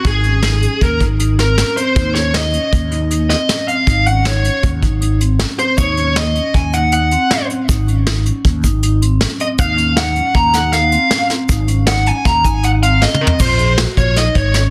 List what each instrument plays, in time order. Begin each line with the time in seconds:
0.04 fretless electric bass G#1, vibraphone D#4, lead electric guitar G#4, kick, closed hi-hat
0.24 vibraphone C#4, closed hi-hat
0.43 vibraphone D#4, snare, closed hi-hat
0.62 vibraphone C#4, closed hi-hat
0.81 fretless electric bass D#2, lead electric guitar A#4, kick, closed hi-hat
1.00 fretless electric bass G#1, vibraphone D#4, kick, closed hi-hat
1.19 vibraphone D#4, closed hi-hat
1.39 vibraphone C4, lead electric guitar A#4, snare, closed hi-hat
1.57 vibraphone C#4, snare, closed hi-hat
1.77 vibraphone C4, lead electric guitar C5, closed hi-hat
1.95 fretless electric bass D#2, vibraphone D#4, kick, closed hi-hat
2.14 vibraphone C#4, lead electric guitar C#5, snare, closed hi-hat
2.34 vibraphone D#4, lead electric guitar D#5, snare, closed hi-hat
2.53 vibraphone C#4, closed hi-hat
2.73 fretless electric bass D#2, kick, closed hi-hat
2.91 vibraphone D#4, closed hi-hat
3.10 vibraphone D#4, closed hi-hat
3.30 vibraphone C4, lead electric guitar D#5, snare, closed hi-hat
3.49 vibraphone C#4, snare, closed hi-hat
3.68 vibraphone C4, lead electric guitar F5, closed hi-hat
3.87 fretless electric bass G#1, vibraphone D#4, kick, closed hi-hat
4.06 vibraphone C#4, lead electric guitar F#5, closed hi-hat
4.25 vibraphone D#4, lead electric guitar C#5, snare, closed hi-hat
4.44 vibraphone C#4, closed hi-hat
4.63 fretless electric bass D#2, kick, closed hi-hat
4.82 fretless electric bass G#1, vibraphone D#4, kick, closed hi-hat
5.01 vibraphone D#4, closed hi-hat
5.21 vibraphone C4, closed hi-hat
5.39 vibraphone C#4, snare, closed hi-hat
5.59 vibraphone C4, lead electric guitar C5, closed hi-hat
5.78 fretless electric bass D#2, vibraphone D#4, lead electric guitar C#5, kick, closed hi-hat, shaker
5.97 vibraphone C#4, closed hi-hat
6.16 vibraphone D#4, lead electric guitar D#5, snare, closed hi-hat
6.35 vibraphone C#4, closed hi-hat
6.54 fretless electric bass D#2, lead electric guitar G#5, kick, closed hi-hat
6.73 vibraphone D#4, lead electric guitar F#5, closed hi-hat, shaker
6.92 vibraphone D#4, lead electric guitar F#5, closed hi-hat, shaker
7.11 vibraphone C4, closed hi-hat
7.30 vibraphone C#4, snare, closed hi-hat
7.49 vibraphone C4, closed hi-hat
7.68 fretless electric bass G#1, vibraphone D#4, kick, closed hi-hat, shaker
7.87 vibraphone C#4, closed hi-hat
8.07 vibraphone D#4, snare, closed hi-hat
8.26 vibraphone C#4, closed hi-hat
8.45 fretless electric bass D#2, kick, closed hi-hat
8.64 fretless electric bass G#1, vibraphone D#4, kick, closed hi-hat, shaker
8.83 vibraphone D#4, closed hi-hat, shaker
9.02 vibraphone C4, closed hi-hat
9.21 vibraphone C#4, snare, closed hi-hat
9.40 vibraphone C4, lead electric guitar D#5, closed hi-hat
9.58 fretless electric bass D#2, vibraphone D#4, lead electric guitar F5, kick, closed hi-hat, shaker
9.77 vibraphone C#4, closed hi-hat
9.96 vibraphone D#4, lead electric guitar F#5, snare, closed hi-hat
10.15 vibraphone C#4, closed hi-hat
10.34 fretless electric bass D#2, lead electric guitar A#5, kick, closed hi-hat
10.53 vibraphone D#4, lead electric guitar F#5, snare, closed hi-hat, shaker
10.72 vibraphone D#4, lead electric guitar F5, snare, closed hi-hat, shaker
10.92 vibraphone C4, closed hi-hat
11.10 vibraphone C#4, snare, closed hi-hat
11.30 vibraphone C4, snare, closed hi-hat
11.49 fretless electric bass G#1, vibraphone D#4, kick, closed hi-hat, shaker
11.68 vibraphone C#4, closed hi-hat, shaker
11.87 vibraphone D#4, lead electric guitar F#5, snare, closed hi-hat
12.06 vibraphone C#4, lead electric guitar G#5, closed hi-hat
12.25 fretless electric bass D#2, lead electric guitar A#5, kick, snare, closed hi-hat
12.44 fretless electric bass G#1, vibraphone D#4, lead electric guitar G#5, kick, closed hi-hat, shaker
12.63 vibraphone D#4, lead electric guitar F#5, closed hi-hat
12.82 vibraphone C4, lead electric guitar F5, closed hi-hat
13.02 vibraphone C#4, lead electric guitar D#5, snare
13.14 mid tom
13.21 vibraphone C4, lead electric guitar A#4
13.27 floor tom
13.39 fretless electric bass A#1, vibraphone F4, lead electric guitar C5, kick, crash, shaker
13.58 vibraphone G#4, closed hi-hat
13.78 vibraphone F#4, snare, closed hi-hat
13.97 fretless electric bass A#1, vibraphone F4, lead electric guitar C#5, kick, closed hi-hat, shaker
14.16 vibraphone D#4, lead electric guitar D#5, snare, closed hi-hat
14.35 fretless electric bass G#1, lead electric guitar C#5, kick, closed hi-hat
14.54 vibraphone C#4, lead electric guitar C#5, snare, closed hi-hat